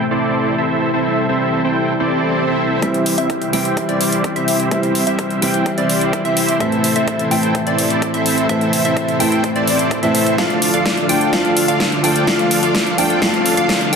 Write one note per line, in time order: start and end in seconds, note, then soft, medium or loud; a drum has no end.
0.00 2.79 A2 medium
0.00 2.79 C3 medium
0.00 2.79 E3 medium
0.00 2.80 E3 medium
0.00 0.92 A3 medium
0.00 2.80 A3 medium
0.00 2.80 C4 medium
0.00 2.79 E4 medium
0.00 2.80 E4 medium
0.11 0.55 C4 medium
0.11 0.55 E4 medium
0.11 0.55 A4 medium
0.11 0.55 C5 medium
0.11 0.55 D5 medium
0.58 0.91 C4 medium
0.58 0.91 E4 medium
0.58 0.91 A4 medium
0.58 0.91 C5 medium
0.58 0.91 E5 medium
0.93 2.81 G3 medium
0.93 1.26 C4 medium
0.93 1.26 E4 medium
0.93 1.26 A4 medium
0.93 1.26 C5 medium
0.93 1.26 E5 medium
1.29 1.62 C4 medium
1.29 1.62 E4 medium
1.29 1.62 A4 medium
1.29 1.62 C5 medium
1.29 1.62 E5 medium
1.64 1.93 C4 medium
1.64 1.93 E4 medium
1.64 1.93 A4 medium
1.64 1.93 C5 medium
1.64 1.93 G5 medium
1.88 swell medium
2.00 2.44 C4 medium
2.00 2.44 E4 medium
2.00 2.44 A4 medium
2.00 2.44 C5 medium
2.00 2.44 D5 medium
2.47 2.80 C4 medium
2.47 2.80 E4 medium
2.47 2.80 A4 medium
2.47 2.80 C5 medium
2.47 2.80 E5 medium
2.81 3.16 C2 loud
2.81 6.57 C3 medium
2.81 3.50 E3 medium
2.81 10.34 E3 medium
2.81 3.50 G3 medium
2.81 6.57 G3 medium
2.81 3.15 C4 medium
2.81 3.51 C4 medium
2.81 3.15 E4 medium
2.81 10.34 E4 medium
2.81 3.51 E4 medium
2.81 3.15 G4 medium
2.81 3.15 C5 medium
2.81 3.15 E5 medium
2.81 kick loud
2.81 closed hi-hat medium
2.94 closed hi-hat soft
3.06 open hi-hat loud
3.18 3.51 C2 medium
3.18 3.51 C4 medium
3.18 3.51 E4 medium
3.18 3.51 G4 medium
3.18 3.51 C5 medium
3.18 3.51 E5 medium
3.18 closed hi-hat soft
3.30 kick loud
3.30 closed hi-hat soft
3.42 closed hi-hat soft
3.52 3.86 C2 loud
3.52 4.68 E3 medium
3.52 4.68 G3 medium
3.52 3.82 C4 medium
3.52 4.69 C4 medium
3.52 3.82 E4 medium
3.52 4.69 E4 loud
3.52 3.82 G4 medium
3.52 3.82 C5 medium
3.52 3.82 G5 medium
3.52 open hi-hat medium
3.65 closed hi-hat medium
3.77 kick loud
3.77 closed hi-hat medium
3.89 4.34 C2 loud
3.89 4.33 C4 medium
3.89 4.33 E4 medium
3.89 4.33 G4 medium
3.89 4.33 C5 medium
3.89 4.33 D5 medium
3.89 closed hi-hat soft
4.01 open hi-hat loud
4.12 closed hi-hat medium
4.24 kick loud
4.24 closed hi-hat medium
4.36 4.69 C2 medium
4.36 4.69 C4 medium
4.36 4.69 E4 medium
4.36 4.69 G4 medium
4.36 4.69 C5 medium
4.36 4.69 E5 medium
4.36 closed hi-hat soft
4.48 open hi-hat medium
4.60 closed hi-hat medium
4.70 5.05 C2 loud
4.70 5.39 E3 medium
4.70 5.39 G3 medium
4.70 5.04 C4 medium
4.70 5.40 C4 medium
4.70 5.04 E4 medium
4.70 5.40 E4 medium
4.70 5.04 G4 medium
4.70 5.04 C5 medium
4.70 5.04 E5 medium
4.70 kick loud
4.70 closed hi-hat soft
4.83 closed hi-hat soft
4.95 open hi-hat loud
5.07 5.40 C2 medium
5.07 5.40 C4 medium
5.07 5.40 E4 medium
5.07 5.40 G4 medium
5.07 5.40 C5 medium
5.07 5.39 E5 medium
5.07 5.40 E5 medium
5.07 closed hi-hat medium
5.19 kick loud
5.19 closed hi-hat soft
5.30 closed hi-hat soft
5.41 5.75 C2 medium
5.41 6.57 E3 medium
5.41 6.58 G3 medium
5.41 5.71 C4 medium
5.41 6.58 C4 medium
5.41 5.71 E4 medium
5.41 6.58 E4 loud
5.41 5.71 G4 medium
5.41 5.71 C5 medium
5.41 5.71 G5 medium
5.41 open hi-hat medium
5.54 closed hi-hat soft
5.66 kick loud
5.66 closed hi-hat soft
5.78 6.23 C2 medium
5.78 6.22 C4 medium
5.78 6.22 E4 medium
5.78 6.22 G4 medium
5.78 6.22 C5 medium
5.78 6.22 D5 medium
5.78 closed hi-hat soft
5.89 open hi-hat loud
6.01 closed hi-hat medium
6.13 kick loud
6.13 closed hi-hat medium
6.25 6.58 C2 loud
6.25 6.58 C4 medium
6.25 6.58 E4 medium
6.25 6.58 G4 medium
6.25 6.58 C5 medium
6.25 6.58 E5 medium
6.25 closed hi-hat soft
6.37 open hi-hat medium
6.49 closed hi-hat medium
6.59 6.94 A1 loud
6.59 7.28 A2 medium
6.59 10.35 C3 medium
6.59 7.28 E3 medium
6.59 13.96 A3 medium
6.59 7.29 A3 medium
6.59 6.93 C4 medium
6.59 7.29 C4 medium
6.59 6.93 E4 medium
6.59 7.29 E4 medium
6.59 6.93 A4 medium
6.59 6.93 C5 medium
6.59 6.93 E5 medium
6.59 kick loud
6.59 closed hi-hat soft
6.72 closed hi-hat soft
6.84 open hi-hat loud
6.96 7.29 A1 medium
6.96 7.29 C4 medium
6.96 7.29 E4 medium
6.96 7.29 A4 medium
6.96 7.29 C5 medium
6.96 7.29 E5 medium
6.96 closed hi-hat soft
7.08 kick loud
7.08 closed hi-hat soft
7.19 closed hi-hat soft
7.30 7.64 A1 medium
7.30 8.46 A2 medium
7.30 8.46 E3 medium
7.30 8.47 A3 medium
7.30 7.60 C4 medium
7.30 8.47 C4 medium
7.30 7.60 E4 medium
7.30 8.47 E4 loud
7.30 7.60 A4 medium
7.30 7.60 C5 medium
7.30 7.60 G5 medium
7.30 open hi-hat medium
7.43 closed hi-hat soft
7.55 kick loud
7.55 closed hi-hat soft
7.67 8.12 A1 medium
7.67 8.11 C4 medium
7.67 8.11 E4 medium
7.67 8.11 A4 medium
7.67 8.11 C5 medium
7.67 8.11 D5 medium
7.67 closed hi-hat soft
7.78 open hi-hat loud
7.90 closed hi-hat medium
8.02 kick loud
8.02 closed hi-hat medium
8.14 8.47 A1 loud
8.14 8.47 C4 medium
8.14 8.47 E4 medium
8.14 8.47 A4 medium
8.14 8.47 C5 medium
8.14 8.47 E5 medium
8.14 closed hi-hat soft
8.26 open hi-hat medium
8.38 closed hi-hat medium
8.48 8.83 A1 medium
8.48 9.17 A2 medium
8.48 9.17 E3 medium
8.48 9.18 A3 medium
8.48 8.82 C4 medium
8.48 9.18 C4 medium
8.48 8.82 E4 medium
8.48 9.18 E4 medium
8.48 8.82 A4 medium
8.48 8.82 C5 medium
8.48 8.82 E5 medium
8.48 kick loud
8.48 closed hi-hat soft
8.61 closed hi-hat soft
8.73 open hi-hat loud
8.85 9.18 A1 loud
8.85 9.17 C4 medium
8.85 9.17 E4 medium
8.85 9.17 A4 medium
8.85 9.17 C5 medium
8.85 9.17 E5 medium
8.85 closed hi-hat soft
8.97 kick loud
8.97 closed hi-hat soft
9.08 closed hi-hat soft
9.19 9.53 A1 loud
9.19 10.00 A2 medium
9.19 10.00 E3 medium
9.19 10.01 A3 medium
9.19 9.49 C4 medium
9.19 10.01 C4 medium
9.19 9.49 E4 medium
9.19 10.01 E4 medium
9.19 9.49 A4 medium
9.19 9.49 C5 medium
9.19 9.49 G5 medium
9.19 open hi-hat medium
9.32 closed hi-hat soft
9.44 kick loud
9.44 closed hi-hat soft
9.56 10.01 A1 loud
9.56 10.00 C4 medium
9.56 10.00 E4 medium
9.56 10.00 A4 medium
9.56 10.00 C5 medium
9.56 10.00 D5 medium
9.56 closed hi-hat soft
9.67 open hi-hat loud
9.79 closed hi-hat medium
9.91 kick loud
9.91 closed hi-hat soft
10.02 10.35 A2 medium
10.02 10.36 A2 loud
10.02 10.35 E3 medium
10.02 10.36 A3 medium
10.02 10.36 C4 medium
10.02 10.36 E4 medium
10.02 10.36 E4 loud
10.02 10.36 A4 medium
10.02 10.36 C5 medium
10.02 10.36 E5 medium
10.02 closed hi-hat soft
10.15 open hi-hat medium
10.27 closed hi-hat soft
10.37 10.71 D2 medium
10.37 13.96 D3 medium
10.37 11.06 F3 medium
10.37 13.96 F3 medium
10.37 11.06 A3 medium
10.37 10.71 D4 medium
10.37 11.07 D4 medium
10.37 10.71 F4 medium
10.37 13.96 F4 medium
10.37 11.07 F4 medium
10.37 10.71 A4 medium
10.37 10.71 D5 medium
10.37 10.71 F5 medium
10.37 kick loud
10.37 snare soft
10.37 closed hi-hat soft
10.37 riser medium
10.50 closed hi-hat soft
10.62 open hi-hat loud
10.74 11.07 D2 loud
10.74 11.07 D4 medium
10.74 11.07 F4 medium
10.74 11.06 A4 medium
10.74 11.06 D5 medium
10.74 11.06 F5 medium
10.74 11.07 F5 medium
10.74 closed hi-hat soft
10.86 kick loud
10.86 snare soft
10.86 closed hi-hat soft
10.97 closed hi-hat soft
11.08 11.31 D2 loud
11.08 11.30 F3 medium
11.08 11.31 A3 medium
11.08 11.31 D4 medium
11.08 11.31 F4 medium
11.08 11.32 F4 medium
11.08 11.31 A4 medium
11.08 11.31 D5 medium
11.08 11.31 G5 medium
11.08 open hi-hat medium
11.21 closed hi-hat soft
11.32 11.66 D2 loud
11.32 12.00 F3 medium
11.32 12.01 A3 medium
11.32 11.66 D4 medium
11.32 12.01 D4 medium
11.32 11.66 F4 medium
11.32 12.02 F4 medium
11.32 11.66 A4 medium
11.32 11.66 D5 medium
11.32 11.65 F5 medium
11.32 11.66 F5 medium
11.32 kick loud
11.32 snare soft
11.32 closed hi-hat soft
11.45 closed hi-hat soft
11.57 open hi-hat loud
11.68 12.01 D2 loud
11.68 12.01 D4 medium
11.68 12.01 F4 medium
11.68 12.01 A4 medium
11.68 12.01 D5 medium
11.68 12.01 F5 medium
11.68 closed hi-hat medium
11.80 kick loud
11.80 snare medium
11.80 closed hi-hat soft
11.92 closed hi-hat soft
12.03 12.25 D2 loud
12.03 12.25 F3 medium
12.03 12.25 A3 medium
12.03 12.26 D4 medium
12.03 12.26 F4 medium
12.03 12.26 A4 medium
12.03 12.26 D5 medium
12.03 12.25 G5 medium
12.03 12.26 G5 medium
12.03 open hi-hat medium
12.16 closed hi-hat medium
12.26 12.61 D2 loud
12.26 12.95 F3 medium
12.26 12.95 A3 medium
12.26 12.60 D4 medium
12.26 12.96 D4 medium
12.26 12.60 F4 medium
12.26 12.96 F4 medium
12.26 12.60 A4 medium
12.26 12.60 D5 medium
12.26 12.60 F5 medium
12.26 kick loud
12.26 snare medium
12.26 closed hi-hat medium
12.39 closed hi-hat soft
12.51 open hi-hat loud
12.63 12.96 D2 loud
12.63 12.96 D4 medium
12.63 12.96 F4 medium
12.63 12.96 A4 medium
12.63 12.96 D5 medium
12.63 12.95 F5 medium
12.63 12.96 F5 medium
12.63 closed hi-hat medium
12.75 kick loud
12.75 snare medium
12.75 closed hi-hat soft
12.86 closed hi-hat soft
12.97 13.20 D2 medium
12.97 13.19 F3 medium
12.97 13.20 A3 medium
12.97 13.20 D4 medium
12.97 13.20 F4 medium
12.97 13.21 F4 medium
12.97 13.20 A4 medium
12.97 13.20 D5 medium
12.97 13.20 G5 medium
12.97 open hi-hat medium
13.10 closed hi-hat medium
13.21 13.55 D2 loud
13.21 13.89 F3 medium
13.21 13.90 A3 medium
13.21 13.55 D4 medium
13.21 13.90 D4 medium
13.21 13.55 F4 medium
13.21 13.91 F4 medium
13.21 13.55 A4 medium
13.21 13.55 D5 medium
13.21 13.55 F5 medium
13.21 kick loud
13.21 snare medium
13.21 closed hi-hat medium
13.34 closed hi-hat soft
13.46 open hi-hat loud
13.57 13.90 D2 loud
13.57 13.90 D4 medium
13.57 13.90 F4 medium
13.57 13.90 A4 medium
13.57 13.90 D5 medium
13.57 13.90 F5 medium
13.57 closed hi-hat medium
13.69 kick loud
13.69 snare medium
13.69 closed hi-hat medium
13.81 closed hi-hat soft
13.92 13.96 F3 medium
13.92 13.96 A3 medium
13.92 13.96 G5 medium